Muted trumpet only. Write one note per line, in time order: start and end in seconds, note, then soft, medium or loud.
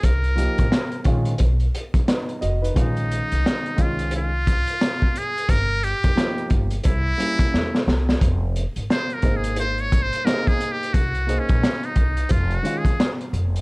0.04 1.06 A#4 medium
2.79 3.83 D#4 medium
3.82 4.14 F4 medium
4.16 5.19 F4 loud
5.17 5.52 G#4 loud
5.50 5.85 A#4 loud
5.84 6.52 G4 loud
6.85 7.84 E4 loud
8.91 9.15 C5 loud
9.13 9.38 A#4 medium
9.36 9.59 G#4 medium
9.59 9.82 C5 loud
9.80 10.04 C#5 medium
10.02 10.27 C5 loud
10.25 10.49 A#4 loud
10.47 10.73 G#4 loud
10.71 10.95 G4 medium
10.93 11.40 F#4 medium
11.39 11.87 C#4 medium
11.85 12.33 D#4 medium
12.31 12.56 F4 medium
12.55 12.79 F#4 medium
12.78 13.11 G#4 medium